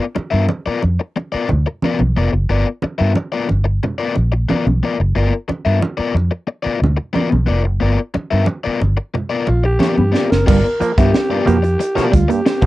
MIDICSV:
0, 0, Header, 1, 10, 480
1, 0, Start_track
1, 0, Tempo, 665188
1, 1798, Time_signature, 4, 2, 24, 8
1, 9137, End_track
2, 0, Start_track
2, 0, Title_t, "Overdriven electric guitar"
2, 0, Program_c, 0, 29
2, 222, Note_on_c, 0, 76, 56
2, 227, Note_on_c, 0, 70, 51
2, 232, Note_on_c, 0, 65, 49
2, 234, Note_on_c, 0, 59, 45
2, 321, Note_off_c, 0, 76, 0
2, 324, Note_off_c, 0, 70, 0
2, 326, Note_off_c, 0, 65, 0
2, 327, Note_off_c, 0, 59, 0
2, 476, Note_on_c, 0, 74, 70
2, 484, Note_on_c, 0, 70, 73
2, 488, Note_on_c, 0, 59, 62
2, 488, Note_on_c, 0, 65, 63
2, 586, Note_off_c, 0, 59, 0
2, 587, Note_off_c, 0, 65, 0
2, 592, Note_off_c, 0, 70, 0
2, 594, Note_off_c, 0, 74, 0
2, 954, Note_on_c, 0, 74, 70
2, 963, Note_on_c, 0, 70, 60
2, 964, Note_on_c, 0, 65, 58
2, 967, Note_on_c, 0, 59, 60
2, 1067, Note_off_c, 0, 59, 0
2, 1071, Note_off_c, 0, 65, 0
2, 1073, Note_off_c, 0, 74, 0
2, 1075, Note_off_c, 0, 70, 0
2, 1330, Note_on_c, 0, 59, 86
2, 1330, Note_on_c, 0, 65, 90
2, 1331, Note_on_c, 0, 70, 95
2, 1338, Note_on_c, 0, 74, 97
2, 1439, Note_off_c, 0, 74, 0
2, 1441, Note_off_c, 0, 59, 0
2, 1441, Note_off_c, 0, 65, 0
2, 1442, Note_off_c, 0, 70, 0
2, 1564, Note_on_c, 0, 59, 67
2, 1569, Note_on_c, 0, 65, 72
2, 1570, Note_on_c, 0, 70, 72
2, 1575, Note_on_c, 0, 74, 67
2, 1653, Note_off_c, 0, 59, 0
2, 1655, Note_off_c, 0, 65, 0
2, 1656, Note_off_c, 0, 70, 0
2, 1658, Note_off_c, 0, 74, 0
2, 1802, Note_on_c, 0, 59, 89
2, 1804, Note_on_c, 0, 65, 83
2, 1807, Note_on_c, 0, 70, 87
2, 1813, Note_on_c, 0, 74, 96
2, 1917, Note_off_c, 0, 59, 0
2, 1918, Note_off_c, 0, 65, 0
2, 1920, Note_off_c, 0, 70, 0
2, 1923, Note_off_c, 0, 74, 0
2, 2153, Note_on_c, 0, 76, 57
2, 2154, Note_on_c, 0, 70, 55
2, 2162, Note_on_c, 0, 65, 53
2, 2164, Note_on_c, 0, 59, 52
2, 2248, Note_off_c, 0, 70, 0
2, 2248, Note_off_c, 0, 76, 0
2, 2253, Note_off_c, 0, 59, 0
2, 2253, Note_off_c, 0, 65, 0
2, 2398, Note_on_c, 0, 74, 67
2, 2405, Note_on_c, 0, 70, 64
2, 2407, Note_on_c, 0, 65, 68
2, 2411, Note_on_c, 0, 59, 59
2, 2505, Note_off_c, 0, 59, 0
2, 2506, Note_off_c, 0, 70, 0
2, 2508, Note_off_c, 0, 65, 0
2, 2510, Note_off_c, 0, 74, 0
2, 2876, Note_on_c, 0, 74, 76
2, 2881, Note_on_c, 0, 70, 73
2, 2882, Note_on_c, 0, 65, 67
2, 2888, Note_on_c, 0, 59, 61
2, 2987, Note_off_c, 0, 59, 0
2, 2987, Note_off_c, 0, 65, 0
2, 2991, Note_off_c, 0, 70, 0
2, 2993, Note_off_c, 0, 74, 0
2, 3239, Note_on_c, 0, 59, 91
2, 3245, Note_on_c, 0, 65, 90
2, 3247, Note_on_c, 0, 70, 90
2, 3250, Note_on_c, 0, 74, 93
2, 3357, Note_off_c, 0, 74, 0
2, 3358, Note_off_c, 0, 59, 0
2, 3360, Note_off_c, 0, 65, 0
2, 3362, Note_off_c, 0, 70, 0
2, 3487, Note_on_c, 0, 59, 56
2, 3493, Note_on_c, 0, 65, 63
2, 3497, Note_on_c, 0, 70, 62
2, 3500, Note_on_c, 0, 74, 70
2, 3576, Note_off_c, 0, 59, 0
2, 3579, Note_off_c, 0, 65, 0
2, 3581, Note_off_c, 0, 70, 0
2, 3583, Note_off_c, 0, 74, 0
2, 3720, Note_on_c, 0, 59, 84
2, 3723, Note_on_c, 0, 65, 92
2, 3727, Note_on_c, 0, 70, 98
2, 3728, Note_on_c, 0, 74, 87
2, 3839, Note_off_c, 0, 59, 0
2, 3840, Note_off_c, 0, 65, 0
2, 3842, Note_off_c, 0, 70, 0
2, 3843, Note_off_c, 0, 74, 0
2, 4078, Note_on_c, 0, 76, 65
2, 4082, Note_on_c, 0, 70, 56
2, 4085, Note_on_c, 0, 59, 56
2, 4088, Note_on_c, 0, 65, 52
2, 4172, Note_off_c, 0, 76, 0
2, 4174, Note_off_c, 0, 70, 0
2, 4176, Note_off_c, 0, 59, 0
2, 4177, Note_off_c, 0, 65, 0
2, 4311, Note_on_c, 0, 74, 80
2, 4314, Note_on_c, 0, 70, 73
2, 4318, Note_on_c, 0, 65, 70
2, 4320, Note_on_c, 0, 59, 70
2, 4431, Note_off_c, 0, 59, 0
2, 4431, Note_off_c, 0, 65, 0
2, 4434, Note_off_c, 0, 70, 0
2, 4435, Note_off_c, 0, 74, 0
2, 4783, Note_on_c, 0, 74, 84
2, 4791, Note_on_c, 0, 70, 60
2, 4793, Note_on_c, 0, 65, 72
2, 4796, Note_on_c, 0, 59, 60
2, 4894, Note_off_c, 0, 59, 0
2, 4898, Note_off_c, 0, 70, 0
2, 4899, Note_off_c, 0, 65, 0
2, 4900, Note_off_c, 0, 74, 0
2, 5147, Note_on_c, 0, 59, 86
2, 5155, Note_on_c, 0, 65, 89
2, 5156, Note_on_c, 0, 70, 87
2, 5158, Note_on_c, 0, 74, 95
2, 5257, Note_off_c, 0, 74, 0
2, 5264, Note_off_c, 0, 70, 0
2, 5266, Note_off_c, 0, 65, 0
2, 5273, Note_off_c, 0, 59, 0
2, 5386, Note_on_c, 0, 59, 61
2, 5392, Note_on_c, 0, 65, 66
2, 5395, Note_on_c, 0, 70, 65
2, 5402, Note_on_c, 0, 74, 74
2, 5487, Note_off_c, 0, 59, 0
2, 5490, Note_off_c, 0, 65, 0
2, 5491, Note_off_c, 0, 70, 0
2, 5495, Note_off_c, 0, 74, 0
2, 5631, Note_on_c, 0, 59, 88
2, 5637, Note_on_c, 0, 65, 85
2, 5643, Note_on_c, 0, 70, 101
2, 5643, Note_on_c, 0, 74, 88
2, 5755, Note_off_c, 0, 59, 0
2, 5758, Note_off_c, 0, 65, 0
2, 5761, Note_off_c, 0, 70, 0
2, 5761, Note_off_c, 0, 74, 0
2, 5995, Note_on_c, 0, 76, 60
2, 5997, Note_on_c, 0, 70, 63
2, 5999, Note_on_c, 0, 65, 49
2, 6003, Note_on_c, 0, 59, 44
2, 6091, Note_off_c, 0, 76, 0
2, 6092, Note_off_c, 0, 70, 0
2, 6093, Note_off_c, 0, 65, 0
2, 6095, Note_off_c, 0, 59, 0
2, 6233, Note_on_c, 0, 74, 70
2, 6241, Note_on_c, 0, 65, 69
2, 6241, Note_on_c, 0, 70, 69
2, 6245, Note_on_c, 0, 59, 60
2, 6347, Note_off_c, 0, 59, 0
2, 6350, Note_off_c, 0, 65, 0
2, 6353, Note_off_c, 0, 74, 0
2, 6354, Note_off_c, 0, 70, 0
2, 6709, Note_on_c, 0, 74, 68
2, 6715, Note_on_c, 0, 70, 74
2, 6720, Note_on_c, 0, 59, 60
2, 6720, Note_on_c, 0, 65, 64
2, 6830, Note_off_c, 0, 59, 0
2, 6833, Note_off_c, 0, 74, 0
2, 6834, Note_off_c, 0, 65, 0
2, 6836, Note_off_c, 0, 70, 0
2, 7068, Note_on_c, 0, 59, 81
2, 7070, Note_on_c, 0, 65, 82
2, 7071, Note_on_c, 0, 70, 86
2, 7075, Note_on_c, 0, 74, 91
2, 7180, Note_off_c, 0, 74, 0
2, 7188, Note_off_c, 0, 70, 0
2, 7190, Note_off_c, 0, 65, 0
2, 7221, Note_off_c, 0, 59, 0
2, 7303, Note_on_c, 0, 59, 58
2, 7310, Note_on_c, 0, 65, 68
2, 7313, Note_on_c, 0, 70, 60
2, 7313, Note_on_c, 0, 74, 64
2, 7404, Note_off_c, 0, 59, 0
2, 7407, Note_off_c, 0, 65, 0
2, 7409, Note_off_c, 0, 70, 0
2, 7409, Note_off_c, 0, 74, 0
2, 7551, Note_on_c, 0, 59, 85
2, 7553, Note_on_c, 0, 65, 92
2, 7558, Note_on_c, 0, 70, 110
2, 7562, Note_on_c, 0, 74, 101
2, 7673, Note_off_c, 0, 59, 0
2, 7674, Note_off_c, 0, 65, 0
2, 7676, Note_off_c, 0, 70, 0
2, 7678, Note_off_c, 0, 74, 0
2, 7924, Note_on_c, 0, 76, 68
2, 7929, Note_on_c, 0, 70, 71
2, 7933, Note_on_c, 0, 65, 62
2, 7937, Note_on_c, 0, 59, 64
2, 8013, Note_off_c, 0, 76, 0
2, 8015, Note_off_c, 0, 70, 0
2, 8018, Note_off_c, 0, 65, 0
2, 8019, Note_off_c, 0, 59, 0
2, 8159, Note_on_c, 0, 74, 90
2, 8165, Note_on_c, 0, 70, 70
2, 8168, Note_on_c, 0, 65, 77
2, 8171, Note_on_c, 0, 59, 76
2, 8266, Note_off_c, 0, 59, 0
2, 8266, Note_off_c, 0, 65, 0
2, 8269, Note_off_c, 0, 70, 0
2, 8270, Note_off_c, 0, 74, 0
2, 8629, Note_on_c, 0, 74, 72
2, 8633, Note_on_c, 0, 70, 74
2, 8635, Note_on_c, 0, 65, 68
2, 8640, Note_on_c, 0, 59, 65
2, 8742, Note_off_c, 0, 65, 0
2, 8744, Note_off_c, 0, 59, 0
2, 8744, Note_off_c, 0, 70, 0
2, 8746, Note_off_c, 0, 74, 0
2, 9137, End_track
3, 0, Start_track
3, 0, Title_t, "Alto saxophone"
3, 0, Program_c, 1, 65
3, 6841, Note_on_c, 1, 65, 80
3, 6953, Note_off_c, 1, 65, 0
3, 6963, Note_on_c, 1, 67, 94
3, 7437, Note_on_c, 1, 70, 91
3, 7448, Note_off_c, 1, 67, 0
3, 7551, Note_off_c, 1, 70, 0
3, 7556, Note_on_c, 1, 70, 105
3, 7866, Note_off_c, 1, 70, 0
3, 7866, Note_on_c, 1, 70, 58
3, 7918, Note_on_c, 1, 67, 102
3, 7929, Note_off_c, 1, 70, 0
3, 8270, Note_off_c, 1, 67, 0
3, 8275, Note_on_c, 1, 67, 101
3, 8760, Note_on_c, 1, 65, 89
3, 8771, Note_off_c, 1, 67, 0
3, 8872, Note_on_c, 1, 67, 106
3, 8883, Note_off_c, 1, 65, 0
3, 9137, Note_off_c, 1, 67, 0
3, 9137, End_track
4, 0, Start_track
4, 0, Title_t, "Clean electric guitar"
4, 0, Program_c, 2, 27
4, 7557, Note_on_c, 2, 55, 97
4, 7643, Note_off_c, 2, 55, 0
4, 7921, Note_on_c, 2, 59, 80
4, 8005, Note_off_c, 2, 59, 0
4, 8280, Note_on_c, 2, 58, 86
4, 8363, Note_off_c, 2, 58, 0
4, 8745, Note_on_c, 2, 55, 87
4, 8833, Note_off_c, 2, 55, 0
4, 8868, Note_on_c, 2, 58, 73
4, 8954, Note_off_c, 2, 58, 0
4, 9137, End_track
5, 0, Start_track
5, 0, Title_t, "Clav"
5, 0, Program_c, 3, 7
5, 7559, Note_on_c, 3, 43, 59
5, 7641, Note_off_c, 3, 43, 0
5, 7793, Note_on_c, 3, 53, 78
5, 7797, Note_on_c, 3, 58, 89
5, 7877, Note_off_c, 3, 53, 0
5, 7879, Note_off_c, 3, 58, 0
5, 8030, Note_on_c, 3, 53, 38
5, 8030, Note_on_c, 3, 58, 40
5, 8082, Note_off_c, 3, 53, 0
5, 8083, Note_off_c, 3, 58, 0
5, 8150, Note_on_c, 3, 43, 57
5, 8235, Note_off_c, 3, 43, 0
5, 8268, Note_on_c, 3, 47, 83
5, 8268, Note_on_c, 3, 53, 71
5, 8273, Note_on_c, 3, 58, 87
5, 8353, Note_off_c, 3, 47, 0
5, 8354, Note_off_c, 3, 53, 0
5, 8356, Note_off_c, 3, 58, 0
5, 8625, Note_on_c, 3, 47, 62
5, 8626, Note_on_c, 3, 53, 70
5, 8629, Note_on_c, 3, 58, 69
5, 8711, Note_off_c, 3, 47, 0
5, 8711, Note_off_c, 3, 53, 0
5, 8713, Note_off_c, 3, 58, 0
5, 8868, Note_on_c, 3, 43, 58
5, 8952, Note_off_c, 3, 43, 0
5, 9105, Note_on_c, 3, 47, 76
5, 9107, Note_on_c, 3, 53, 70
5, 9111, Note_on_c, 3, 58, 84
5, 9137, Note_off_c, 3, 47, 0
5, 9137, Note_off_c, 3, 53, 0
5, 9137, Note_off_c, 3, 58, 0
5, 9137, End_track
6, 0, Start_track
6, 0, Title_t, "Fingered electric bass"
6, 0, Program_c, 4, 33
6, 242, Note_on_c, 4, 43, 84
6, 341, Note_off_c, 4, 43, 0
6, 606, Note_on_c, 4, 41, 76
6, 704, Note_off_c, 4, 41, 0
6, 1095, Note_on_c, 4, 38, 74
6, 1189, Note_off_c, 4, 38, 0
6, 1446, Note_on_c, 4, 35, 67
6, 1544, Note_off_c, 4, 35, 0
6, 1567, Note_on_c, 4, 29, 80
6, 1665, Note_off_c, 4, 29, 0
6, 1683, Note_on_c, 4, 30, 80
6, 1783, Note_off_c, 4, 30, 0
6, 1801, Note_on_c, 4, 31, 93
6, 1902, Note_off_c, 4, 31, 0
6, 2170, Note_on_c, 4, 43, 76
6, 2267, Note_off_c, 4, 43, 0
6, 2531, Note_on_c, 4, 31, 72
6, 2730, Note_off_c, 4, 31, 0
6, 3012, Note_on_c, 4, 34, 69
6, 3211, Note_off_c, 4, 34, 0
6, 3367, Note_on_c, 4, 35, 73
6, 3467, Note_off_c, 4, 35, 0
6, 3607, Note_on_c, 4, 30, 84
6, 3707, Note_off_c, 4, 30, 0
6, 3726, Note_on_c, 4, 31, 90
6, 3826, Note_off_c, 4, 31, 0
6, 4086, Note_on_c, 4, 43, 76
6, 4187, Note_off_c, 4, 43, 0
6, 4436, Note_on_c, 4, 41, 76
6, 4541, Note_off_c, 4, 41, 0
6, 4920, Note_on_c, 4, 38, 81
6, 5024, Note_off_c, 4, 38, 0
6, 5288, Note_on_c, 4, 35, 78
6, 5388, Note_off_c, 4, 35, 0
6, 5407, Note_on_c, 4, 29, 87
6, 5527, Note_off_c, 4, 29, 0
6, 5527, Note_on_c, 4, 30, 82
6, 5628, Note_off_c, 4, 30, 0
6, 5646, Note_on_c, 4, 31, 93
6, 5747, Note_off_c, 4, 31, 0
6, 6011, Note_on_c, 4, 43, 75
6, 6110, Note_off_c, 4, 43, 0
6, 6362, Note_on_c, 4, 31, 81
6, 6464, Note_off_c, 4, 31, 0
6, 6847, Note_on_c, 4, 34, 74
6, 7048, Note_off_c, 4, 34, 0
6, 7207, Note_on_c, 4, 43, 85
6, 7306, Note_off_c, 4, 43, 0
6, 7446, Note_on_c, 4, 30, 62
6, 7545, Note_off_c, 4, 30, 0
6, 7566, Note_on_c, 4, 31, 104
6, 7665, Note_off_c, 4, 31, 0
6, 7923, Note_on_c, 4, 43, 85
6, 8023, Note_off_c, 4, 43, 0
6, 8281, Note_on_c, 4, 41, 91
6, 8482, Note_off_c, 4, 41, 0
6, 8758, Note_on_c, 4, 38, 84
6, 8858, Note_off_c, 4, 38, 0
6, 9108, Note_on_c, 4, 35, 78
6, 9137, Note_off_c, 4, 35, 0
6, 9137, End_track
7, 0, Start_track
7, 0, Title_t, "Muted clean electric guitar strokes"
7, 7797, Note_on_c, 9, 29, 51
7, 7869, Note_off_c, 9, 29, 0
7, 8517, Note_on_c, 9, 29, 49
7, 8589, Note_off_c, 9, 29, 0
7, 9137, End_track
8, 0, Start_track
8, 0, Title_t, "Muted fingered electric bass strokes"
8, 128, Note_on_c, 9, 29, 44
8, 200, Note_off_c, 9, 29, 0
8, 484, Note_on_c, 9, 29, 40
8, 556, Note_off_c, 9, 29, 0
8, 969, Note_on_c, 9, 29, 38
8, 1041, Note_off_c, 9, 29, 0
8, 2050, Note_on_c, 9, 29, 40
8, 2122, Note_off_c, 9, 29, 0
8, 3257, Note_on_c, 9, 29, 43
8, 3329, Note_off_c, 9, 29, 0
8, 3969, Note_on_c, 9, 29, 45
8, 4041, Note_off_c, 9, 29, 0
8, 4323, Note_on_c, 9, 29, 38
8, 4395, Note_off_c, 9, 29, 0
8, 4809, Note_on_c, 9, 29, 44
8, 4881, Note_off_c, 9, 29, 0
8, 5890, Note_on_c, 9, 29, 45
8, 5962, Note_off_c, 9, 29, 0
8, 6255, Note_on_c, 9, 29, 43
8, 6327, Note_off_c, 9, 29, 0
8, 7804, Note_on_c, 9, 29, 46
8, 7876, Note_off_c, 9, 29, 0
8, 8642, Note_on_c, 9, 29, 49
8, 8714, Note_off_c, 9, 29, 0
8, 9137, End_track
9, 0, Start_track
9, 0, Title_t, "Muted overdriven electric guitar strokes"
9, 110, Note_on_c, 9, 29, 32
9, 182, Note_off_c, 9, 29, 0
9, 353, Note_on_c, 9, 29, 34
9, 425, Note_off_c, 9, 29, 0
9, 595, Note_on_c, 9, 29, 35
9, 667, Note_off_c, 9, 29, 0
9, 719, Note_on_c, 9, 29, 37
9, 792, Note_off_c, 9, 29, 0
9, 838, Note_on_c, 9, 29, 44
9, 910, Note_off_c, 9, 29, 0
9, 1076, Note_on_c, 9, 29, 43
9, 1148, Note_off_c, 9, 29, 0
9, 1201, Note_on_c, 9, 29, 46
9, 1273, Note_off_c, 9, 29, 0
9, 1448, Note_on_c, 9, 29, 38
9, 1520, Note_off_c, 9, 29, 0
9, 1678, Note_on_c, 9, 29, 45
9, 1750, Note_off_c, 9, 29, 0
9, 2041, Note_on_c, 9, 29, 28
9, 2113, Note_off_c, 9, 29, 0
9, 2279, Note_on_c, 9, 29, 33
9, 2351, Note_off_c, 9, 29, 0
9, 2514, Note_on_c, 9, 29, 43
9, 2586, Note_off_c, 9, 29, 0
9, 2629, Note_on_c, 9, 29, 37
9, 2701, Note_off_c, 9, 29, 0
9, 2766, Note_on_c, 9, 29, 38
9, 2839, Note_off_c, 9, 29, 0
9, 2996, Note_on_c, 9, 29, 41
9, 3068, Note_off_c, 9, 29, 0
9, 3117, Note_on_c, 9, 29, 42
9, 3190, Note_off_c, 9, 29, 0
9, 3366, Note_on_c, 9, 29, 48
9, 3438, Note_off_c, 9, 29, 0
9, 3608, Note_on_c, 9, 29, 48
9, 3681, Note_off_c, 9, 29, 0
9, 3957, Note_on_c, 9, 29, 38
9, 4029, Note_off_c, 9, 29, 0
9, 4194, Note_on_c, 9, 29, 42
9, 4267, Note_off_c, 9, 29, 0
9, 4439, Note_on_c, 9, 29, 42
9, 4511, Note_off_c, 9, 29, 0
9, 4554, Note_on_c, 9, 29, 44
9, 4626, Note_off_c, 9, 29, 0
9, 4671, Note_on_c, 9, 29, 36
9, 4743, Note_off_c, 9, 29, 0
9, 4902, Note_on_c, 9, 29, 36
9, 4974, Note_off_c, 9, 29, 0
9, 5028, Note_on_c, 9, 29, 40
9, 5100, Note_off_c, 9, 29, 0
9, 5266, Note_on_c, 9, 29, 38
9, 5338, Note_off_c, 9, 29, 0
9, 5513, Note_on_c, 9, 29, 41
9, 5585, Note_off_c, 9, 29, 0
9, 5875, Note_on_c, 9, 29, 43
9, 5947, Note_off_c, 9, 29, 0
9, 6104, Note_on_c, 9, 29, 39
9, 6176, Note_off_c, 9, 29, 0
9, 6356, Note_on_c, 9, 29, 35
9, 6428, Note_off_c, 9, 29, 0
9, 6473, Note_on_c, 9, 29, 39
9, 6546, Note_off_c, 9, 29, 0
9, 6595, Note_on_c, 9, 29, 36
9, 6668, Note_off_c, 9, 29, 0
9, 6839, Note_on_c, 9, 29, 34
9, 6911, Note_off_c, 9, 29, 0
9, 6954, Note_on_c, 9, 29, 38
9, 7027, Note_off_c, 9, 29, 0
9, 7188, Note_on_c, 9, 29, 36
9, 7261, Note_off_c, 9, 29, 0
9, 7430, Note_on_c, 9, 29, 34
9, 7502, Note_off_c, 9, 29, 0
9, 7798, Note_on_c, 9, 29, 43
9, 7870, Note_off_c, 9, 29, 0
9, 8047, Note_on_c, 9, 29, 40
9, 8119, Note_off_c, 9, 29, 0
9, 8275, Note_on_c, 9, 29, 45
9, 8347, Note_off_c, 9, 29, 0
9, 8389, Note_on_c, 9, 29, 39
9, 8462, Note_off_c, 9, 29, 0
9, 8512, Note_on_c, 9, 29, 41
9, 8585, Note_off_c, 9, 29, 0
9, 8751, Note_on_c, 9, 29, 47
9, 8823, Note_off_c, 9, 29, 0
9, 8864, Note_on_c, 9, 29, 56
9, 8936, Note_off_c, 9, 29, 0
9, 8990, Note_on_c, 9, 29, 45
9, 9062, Note_off_c, 9, 29, 0
9, 9105, Note_on_c, 9, 29, 51
9, 9137, Note_off_c, 9, 29, 0
9, 9137, End_track
10, 0, Start_track
10, 0, Title_t, "Drums"
10, 113, Note_on_c, 9, 62, 62
10, 185, Note_off_c, 9, 62, 0
10, 350, Note_on_c, 9, 63, 73
10, 422, Note_off_c, 9, 63, 0
10, 595, Note_on_c, 9, 62, 47
10, 667, Note_off_c, 9, 62, 0
10, 843, Note_on_c, 9, 62, 31
10, 916, Note_off_c, 9, 62, 0
10, 1075, Note_on_c, 9, 62, 49
10, 1075, Note_on_c, 9, 64, 83
10, 1147, Note_off_c, 9, 62, 0
10, 1147, Note_off_c, 9, 64, 0
10, 1316, Note_on_c, 9, 63, 86
10, 1388, Note_off_c, 9, 63, 0
10, 1437, Note_on_c, 9, 63, 78
10, 1509, Note_off_c, 9, 63, 0
10, 2036, Note_on_c, 9, 62, 59
10, 2108, Note_off_c, 9, 62, 0
10, 2276, Note_on_c, 9, 63, 73
10, 2348, Note_off_c, 9, 63, 0
10, 2520, Note_on_c, 9, 62, 48
10, 2592, Note_off_c, 9, 62, 0
10, 2765, Note_on_c, 9, 64, 76
10, 2837, Note_off_c, 9, 64, 0
10, 2999, Note_on_c, 9, 62, 54
10, 3071, Note_off_c, 9, 62, 0
10, 3246, Note_on_c, 9, 63, 72
10, 3318, Note_off_c, 9, 63, 0
10, 3370, Note_on_c, 9, 63, 73
10, 3442, Note_off_c, 9, 63, 0
10, 3963, Note_on_c, 9, 62, 57
10, 4035, Note_off_c, 9, 62, 0
10, 4203, Note_on_c, 9, 63, 84
10, 4275, Note_off_c, 9, 63, 0
10, 4452, Note_on_c, 9, 62, 52
10, 4524, Note_off_c, 9, 62, 0
10, 4933, Note_on_c, 9, 62, 56
10, 4933, Note_on_c, 9, 64, 79
10, 5005, Note_off_c, 9, 62, 0
10, 5005, Note_off_c, 9, 64, 0
10, 5163, Note_on_c, 9, 63, 80
10, 5235, Note_off_c, 9, 63, 0
10, 5284, Note_on_c, 9, 63, 81
10, 5356, Note_off_c, 9, 63, 0
10, 5875, Note_on_c, 9, 62, 52
10, 5947, Note_off_c, 9, 62, 0
10, 6106, Note_on_c, 9, 63, 78
10, 6178, Note_off_c, 9, 63, 0
10, 6361, Note_on_c, 9, 62, 52
10, 6433, Note_off_c, 9, 62, 0
10, 6601, Note_on_c, 9, 64, 73
10, 6673, Note_off_c, 9, 64, 0
10, 6833, Note_on_c, 9, 62, 56
10, 6905, Note_off_c, 9, 62, 0
10, 7073, Note_on_c, 9, 63, 88
10, 7083, Note_on_c, 9, 38, 54
10, 7145, Note_off_c, 9, 63, 0
10, 7155, Note_off_c, 9, 38, 0
10, 7199, Note_on_c, 9, 63, 78
10, 7271, Note_off_c, 9, 63, 0
10, 7321, Note_on_c, 9, 38, 82
10, 7394, Note_off_c, 9, 38, 0
10, 7448, Note_on_c, 9, 38, 85
10, 7520, Note_off_c, 9, 38, 0
10, 7564, Note_on_c, 9, 36, 127
10, 7568, Note_on_c, 9, 49, 118
10, 7636, Note_off_c, 9, 36, 0
10, 7640, Note_off_c, 9, 49, 0
10, 7691, Note_on_c, 9, 42, 35
10, 7763, Note_off_c, 9, 42, 0
10, 7803, Note_on_c, 9, 42, 70
10, 7875, Note_off_c, 9, 42, 0
10, 7921, Note_on_c, 9, 36, 98
10, 7923, Note_on_c, 9, 42, 55
10, 7994, Note_off_c, 9, 36, 0
10, 7995, Note_off_c, 9, 42, 0
10, 8041, Note_on_c, 9, 38, 118
10, 8114, Note_off_c, 9, 38, 0
10, 8279, Note_on_c, 9, 42, 62
10, 8352, Note_off_c, 9, 42, 0
10, 8400, Note_on_c, 9, 42, 53
10, 8472, Note_off_c, 9, 42, 0
10, 8516, Note_on_c, 9, 42, 91
10, 8588, Note_off_c, 9, 42, 0
10, 8640, Note_on_c, 9, 42, 38
10, 8641, Note_on_c, 9, 38, 41
10, 8712, Note_off_c, 9, 42, 0
10, 8713, Note_off_c, 9, 38, 0
10, 8756, Note_on_c, 9, 36, 78
10, 8756, Note_on_c, 9, 42, 79
10, 8828, Note_off_c, 9, 36, 0
10, 8828, Note_off_c, 9, 42, 0
10, 8878, Note_on_c, 9, 42, 56
10, 8950, Note_off_c, 9, 42, 0
10, 8993, Note_on_c, 9, 38, 115
10, 9065, Note_off_c, 9, 38, 0
10, 9108, Note_on_c, 9, 36, 93
10, 9110, Note_on_c, 9, 42, 36
10, 9137, Note_off_c, 9, 36, 0
10, 9137, Note_off_c, 9, 42, 0
10, 9137, End_track
0, 0, End_of_file